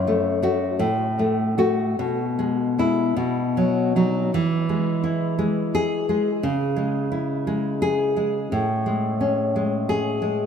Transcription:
Already playing: F#2
0.07 A3
0.42 A3 F#4
0.79 A2
1.19 A3
1.58 A3 F#4
1.99 B2
2.39 G#3
2.78 G#3 E4
3.16 B2
3.57 F#3
3.96 F#3 D#4
4.34 E3
4.69 G#3
5.04 E4
5.39 G#3
5.75 G#4
6.09 G#3
6.43 C#3
6.76 G#3
7.12 E4
7.47 G#3
7.82 G#4
8.17 G#3
8.52 A2
8.86 G#3
9.21 C#4
9.56 G#3
9.89 G#4
10.22 G#3

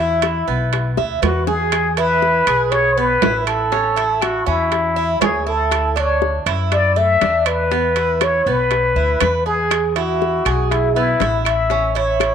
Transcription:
Already playing: E2 E4
0.22 high bongo, high timbale
0.48 B1 B3
0.73 high bongo, high timbale
0.97 D2 E4, high bongo
1.22 E2 F#4 B4, high timbale, low timbale
1.47 G#4, low bongo
1.72 high bongo, high timbale, claves
1.97 E4 B4, high bongo, high timbale
2.22 high bongo
2.47 B1 G#4, high timbale, claves
2.71 C#5, high bongo, high timbale
2.97 B3 B4, high bongo
3.22 A1 E4, high bongo, low bongo, high timbale, low timbale
3.46 A4, high bongo, high timbale, claves
3.72 C#4, high bongo
3.96 E4, high bongo, high timbale
4.22 F#4, high bongo, high timbale, claves
4.46 E2 C#4 E4
4.72 high bongo, high timbale
4.96 E4
5.21 D2 G#4 C#5, high bongo, low bongo, high timbale, low timbale, claves
5.46 E4 A4, high bongo
5.71 high bongo, high timbale, claves
5.96 D4 C#5, high bongo, high timbale
6.22 high bongo
6.46 F#2 E4, high timbale, claves
6.72 D5, high bongo, high timbale
6.96 A3 E5, high bongo
7.21 E2 D4, high bongo, low bongo, high timbale
7.46 B4, high bongo, high timbale, claves
7.71 B3, high bongo
7.96 E4, high bongo, high timbale
8.21 C#5, high bongo, high timbale, claves
8.46 B1 B3 B4
8.71 high bongo, high timbale
8.95 D2 E4
9.21 E2 B4, high bongo, low bongo, high timbale, claves
9.46 G#4, high bongo
9.71 high bongo, high timbale, claves
9.96 E4 F#4, high bongo, high timbale
10.22 high bongo
10.45 B1 G#4, high timbale, claves
10.71 E4, high bongo, high timbale
10.94 B3 E4, high bongo
11.20 A1 E4, high bongo, low bongo, high timbale
11.45 E5, high bongo, high timbale, claves
11.70 C#4, high bongo
11.95 E4 C#5, high bongo, high timbale
12.20 high bongo, high timbale, claves

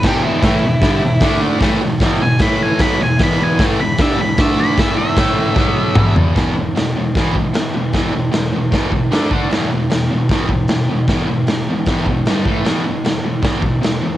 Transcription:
0.03 E2 B2 E3 G4, kick, snare, crash
0.23 E4
0.42 A2 E3 A3, kick, snare, open hi-hat
0.63 E2 B2
0.82 G2 D3 G3, kick, snare, open hi-hat
1.03 E2 B2
1.20 D3 A3 D4, kick, snare, open hi-hat
1.60 A2 E3 A3, kick, snare, open hi-hat
1.81 E2 B2
2.00 E2 B2 E3, kick, snare, open hi-hat
2.21 E2 B2 G#5
2.39 A2 E3 A3 B5, kick, snare, open hi-hat
2.63 G#5
2.79 B2 F#3 B3 B5, kick, snare, open hi-hat
3.01 E2 B2 G#5
3.19 E2 B2 E3, kick, snare, open hi-hat
3.23 B5
3.43 G#5
3.59 A2 E3 A3, kick, snare, open hi-hat
3.80 E2 B2 B5
3.98 G2 D3 G3 E5, kick, snare, open hi-hat
4.18 E2 B2 B5
4.37 D3 A3 D4 E5, kick, snare, open hi-hat
4.60 B5
4.78 E3 B3 E4 E5, kick, snare, open hi-hat
4.98 E5
5.16 A2 E3 A3, kick, snare, open hi-hat
5.56 B2 F#3 B3, kick, snare
5.95 E2 B2 E3, kick, mid tom
6.16 floor tom
6.35 E2 B2 E3, kick, snare, open hi-hat
6.56 E2 B2
6.75 E2 B2, snare, open hi-hat
6.96 E2 B2
7.15 E2 B2 E3, kick, snare, open hi-hat
7.35 E2 B2, kick
7.53 E2 B2, snare, open hi-hat
7.73 E2 B2
7.93 E2 B2 E3, kick, snare, open hi-hat
8.12 E2 B2
8.31 E2 B2, snare, open hi-hat
8.53 E2 B2
8.72 E2 B2 E3, kick, snare, open hi-hat
8.91 E2 B2, kick
9.11 D3 A3 D4, snare, open hi-hat
9.31 D3 A3 D4, kick
9.50 E2 B2 E3, snare, open hi-hat
9.71 E2 B2
9.90 E2 B2, snare, open hi-hat
10.10 E2 B2
10.29 E2 B2 E3, kick, snare, open hi-hat
10.49 E2 B2, kick
10.68 E2 B2, snare, open hi-hat
10.89 E2 B2
11.08 E2 B2 E3, kick, snare, open hi-hat
11.28 E2 B2
11.47 E2 B2, snare, open hi-hat
11.69 E2 B2
11.86 E2 B2 E3, kick, snare, open hi-hat
12.06 E2 B2, kick
12.26 G2 D3 G3, snare, open hi-hat
12.45 A2 E3 A3, kick
12.65 E2 B2 E3, snare, open hi-hat
12.85 E2 B2
13.04 E2 B2, snare, open hi-hat
13.24 E2 B2
13.42 E2 B2 E3, kick, snare, open hi-hat
13.62 E2 B2, kick
13.81 E2 B2, snare, open hi-hat
14.02 E2 B2

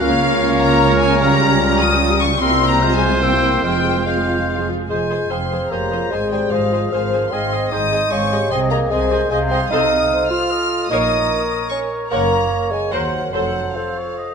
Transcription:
0.01 C#2 C#3 A#3 C#4 F4 A#4 C#5 F5 F6
0.11 A#3 C#4
0.22 C#4 F4
0.32 A#3 C#4
0.41 C#4 F4
0.51 A#3 C#4
0.61 C#4 F4 A#5
0.71 A#3 C#4
0.82 C#4 F4
0.92 A#3 C#4
1.00 C#4 F4 G#5
1.11 A#3 C#4
1.20 F3 G3 F4 A#5
1.31 G3 G4
1.41 F3 F4
1.51 G3 G4
1.61 F3 F4
1.71 G3 G4
1.80 F3 F4 D#6
1.91 G3 G4
2.01 F3 F4
2.10 G3 G4
2.21 F3 F4 C#6
2.31 G3 G4
2.40 C2 C3 G3 A#3 C4 E4 A#4 C5 C6 E6
2.50 A#3 G4
2.61 C4 E4
2.68 A#3 G4 A#5
2.81 F3 G#3 C4 F4 C5 F6
2.92 G#3 G#4 G#5
3.01 F3 F4
3.11 G#3 G#4
3.22 A#3 C4 E4 C5 G5 E6
3.32 A#3 G4
3.42 C4 E4
3.53 A#3 G4
3.63 F1 F2 F3 G#3 C4 F4 C5 G5 F6
3.74 G#3 G#4
3.84 F3 F4
3.95 G#3 G#4
4.06 F3 G#3 C4 F4 C5 F5 F6
4.17 G#3 G#4
4.28 F3 F4
4.38 G#3 G#4
4.48 F3 F4
4.59 G#3 G#4
4.69 F3 F4
4.80 G#3 G#4
4.89 F1 F2 G#3 F4 G#4 C5 G#5
5.10 G#4 C5 G#5
5.30 F1 F2 C4 G#4 C5 F5 G#5 C6
5.51 G#4 C5 G#5
5.71 F1 F2 A#3 G4 G#4 C5 C#5 G#5 A#5
5.91 F4 G#4 C5 G#5
6.11 G#1 G#2 G#3 G#4 C5 G#5
6.31 G3 G#4 C5 G5 G#5
6.51 G#1 G#2 F3 G4 G#4 C5 D#5 F5 G#5
6.72 F4 G#4 C5 G#5
6.91 G#1 G#2 F3 G#4 A#4 C5 F5 G#5
7.12 G#4 C5 G#5
7.32 G#1 G#2 C4 G#4 D#5 F5 G#5 C6
7.52 G#4 D#5 G#5
7.71 G#1 G#2 D#4 G#4 C5 D#5 G#5 D#6
7.92 G#4 C5 D#5 G#5
8.11 G#1 G#2 C#4 G#4 D#5 F5 G#5 C#6
8.31 G4 G#4 D#5 G#5
8.51 C2 C3 C4 G#4 D#5 G#5 C6
8.71 A#3 G#4 D#5 G#5 A#5
8.90 C2 C3 G#3 G#4 A#4 C5 D#5 G#5
9.11 G#4 C5 D#5 G#5
9.31 C2 C3 G#3 G#4 C5 D#5 F5 G#5
9.50 C4 G#4 D#5 G#5 C6
9.71 C2 C3 D#4 A4 C5 D#5 F5 D#6
10.11 C5
10.30 F4 F6
10.50 A4 D#5
10.90 A#1 A#2 D#4 A#4 C#5 F5 D#6
11.70 C#4 A#4 C#5 C#6
12.10 F#1 F#2 A#3 A#4 C#5 F#5 A#5
12.51 C#5
12.72 G#3 G#5
12.92 D#2 F#3 A#4 C5 F#5
13.33 F1 F2 F#3 A4 C5 F#5
13.76 F3 A4 C5 F5
13.97 C#5
14.18 D#5

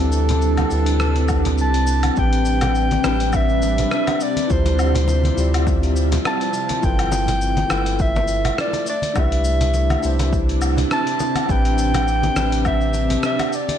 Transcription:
Already playing: D2 C3 G3 C4 D4 E4 G4 A4 B4
0.00 closed hi-hat, shaker
0.12 shaker
0.29 closed hi-hat, muted conga, low conga, shaker
0.42 shaker
0.57 closed hi-hat, high conga, low woodblock, shaker
0.68 D2 C4 E4 G4, shaker
0.74 B4
0.86 closed hi-hat, shaker
1.00 cross-stick, shaker
1.16 closed hi-hat, shaker
1.28 kick, low woodblock, shaker
1.45 closed hi-hat, muted conga, low conga, shaker
1.58 C2 A5, shaker
1.74 closed hi-hat, shaker
1.87 shaker
2.03 closed hi-hat, high conga, low woodblock, shaker
2.15 A1 C3 G3 C4 D4 G4 B4, kick, shaker
2.19 B4 G5
2.33 closed hi-hat, shaker
2.45 shaker
2.61 closed hi-hat, muted conga, low conga, low woodblock, shaker
2.75 shaker
2.91 closed hi-hat, high conga, shaker
3.02 A1 C4 D4, cross-stick, muted conga, shaker
3.06 G4 B4
3.20 closed hi-hat, shaker
3.33 E5, kick, low woodblock, shaker
3.49 shaker
3.62 muted conga, shaker
3.78 closed hi-hat, low conga, shaker
3.91 E5, cross-stick, shaker
4.07 closed hi-hat, muted conga, low woodblock, shaker
4.20 F3 D5 E5, shaker
4.37 closed hi-hat, high conga, shaker
4.48 D2 E4 F4 C5, kick, shaker
4.52 G4 C5
4.66 closed hi-hat, muted conga, shaker
4.79 low woodblock, shaker
4.95 closed hi-hat, low conga, shaker
5.08 muted conga, shaker
5.24 closed hi-hat, high conga, shaker
5.35 D2 E4 F4 G4, shaker
5.40 D5
5.54 closed hi-hat, low woodblock, shaker
5.67 kick, muted conga, shaker
5.83 closed hi-hat, shaker
5.96 shaker
6.12 closed hi-hat, muted conga, low conga, shaker
6.25 A5, cross-stick, low woodblock, shaker
6.41 closed hi-hat, shaker
6.54 shaker
6.69 closed hi-hat, muted conga, high conga, shaker
6.80 G1 A3 E4 F4 A4, kick, shaker
6.85 B4 G5
6.99 closed hi-hat, low woodblock, shaker
7.12 muted conga, shaker
7.28 closed hi-hat, low conga, shaker
7.42 shaker
7.57 closed hi-hat, high conga, shaker
7.68 G1 E4 F4, cross-stick, muted conga, low woodblock, shaker
7.72 A4 B4
7.86 closed hi-hat, shaker
7.99 E5, kick, shaker
8.16 muted conga, shaker
8.28 shaker
8.45 closed hi-hat, low conga, low woodblock, shaker
8.58 D5, cross-stick, shaker
8.73 closed hi-hat, muted conga, shaker
8.87 C3 D4 E4 D5, shaker
9.02 closed hi-hat, high conga, shaker
9.14 C2 D4 E4 G4, kick, muted conga, low woodblock, shaker
9.19 B4 E5
9.32 closed hi-hat, shaker
9.45 shaker
9.61 closed hi-hat, low conga, shaker
9.74 muted conga, shaker
9.90 closed hi-hat, high conga, low woodblock, shaker
10.00 D4 E4 G4, shaker
10.04 C2 C5
10.19 closed hi-hat, muted conga, shaker
10.33 kick, shaker
10.49 closed hi-hat, shaker
10.62 low woodblock, shaker
10.77 closed hi-hat, muted conga, low conga, shaker
10.91 A5, cross-stick, shaker
11.07 closed hi-hat, shaker
11.20 muted conga, shaker
11.35 closed hi-hat, high conga, low woodblock, shaker
11.46 A1 C4 D4 G4, kick, shaker
11.51 B4 G5
11.65 closed hi-hat, shaker
11.78 shaker
11.94 closed hi-hat, muted conga, low conga, low woodblock, shaker
12.08 shaker
12.23 closed hi-hat, high conga, shaker
12.34 A1 C4 D4 G4, cross-stick, muted conga, shaker
12.40 B4
12.52 closed hi-hat, shaker
12.65 E5, kick, low woodblock, shaker
12.81 shaker
12.94 muted conga, shaker
13.10 closed hi-hat, low conga, shaker
13.23 E5, cross-stick, shaker
13.39 closed hi-hat, muted conga, low woodblock, shaker
13.53 F3 C4 D5 E5, shaker
13.69 closed hi-hat, high conga, shaker

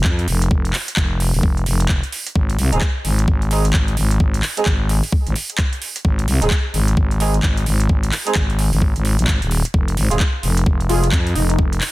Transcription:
0.04 F2, kick, clap
0.19 closed hi-hat
0.28 F1, open hi-hat
0.42 closed hi-hat
0.51 F1, kick
0.65 closed hi-hat
0.73 clap, open hi-hat
0.88 closed hi-hat
0.96 F1, kick, clap
1.20 open hi-hat
1.34 F1, open hi-hat
1.43 kick
1.57 closed hi-hat
1.66 F1, open hi-hat
1.80 closed hi-hat
1.89 kick, clap
2.03 closed hi-hat
2.12 open hi-hat
2.27 closed hi-hat
2.35 G#1, kick
2.50 closed hi-hat
2.59 C2, open hi-hat
2.73 D#1 G#3 C4 D#4 G#4, closed hi-hat
2.81 kick, clap
3.05 G#1, open hi-hat
3.19 closed hi-hat
3.28 G#1, kick
3.42 closed hi-hat
3.51 G#3 C4 D#4 G#4, open hi-hat
3.65 closed hi-hat
3.73 G#1, kick, clap
3.88 closed hi-hat
3.97 G#1, open hi-hat
4.11 closed hi-hat
4.20 G#1, kick
4.34 closed hi-hat
4.43 clap, open hi-hat
4.57 G#3 C4 D#4 G#4, closed hi-hat
4.66 G#1, kick, clap
4.89 open hi-hat
5.03 open hi-hat
5.12 kick
5.27 G#1, closed hi-hat
5.36 open hi-hat
5.50 closed hi-hat
5.58 kick, clap
5.73 closed hi-hat
5.82 open hi-hat
5.96 closed hi-hat
6.05 G#1, kick
6.19 closed hi-hat
6.28 C2, open hi-hat
6.42 D#1 G#3 C4 D#4 G#4, closed hi-hat
6.50 kick, clap
6.74 G#1, open hi-hat
6.88 closed hi-hat
6.97 G#1, kick
7.11 closed hi-hat
7.20 G#3 C4 D#4 G#4, open hi-hat
7.34 closed hi-hat
7.43 G#1, kick, clap
7.57 closed hi-hat
7.66 G#1, open hi-hat
7.80 closed hi-hat
7.89 G#1, kick
8.03 closed hi-hat
8.12 clap, open hi-hat
8.26 G#3 C4 D#4 G#4, closed hi-hat
8.35 G#1, kick, clap
8.50 closed hi-hat
8.59 open hi-hat
8.73 G#1, open hi-hat
8.82 kick
8.96 G#1, closed hi-hat
9.05 open hi-hat
9.19 A#1, closed hi-hat
9.27 G#1, kick, clap
9.42 D#1, closed hi-hat
9.51 open hi-hat
9.65 closed hi-hat
9.74 F1, kick
9.88 closed hi-hat
9.97 G#1, open hi-hat
10.11 D#1 G#3 C4 F4 G#4, closed hi-hat
10.20 kick, clap
10.43 F1, open hi-hat
10.57 closed hi-hat
10.66 F1, kick
10.80 closed hi-hat
10.89 G#3 C4 F4 G#4, open hi-hat
11.04 F4, closed hi-hat
11.12 F2, kick, clap
11.27 closed hi-hat
11.36 F1 D#4, open hi-hat
11.50 D#4, closed hi-hat
11.59 F1, kick
11.73 closed hi-hat
11.81 clap, open hi-hat

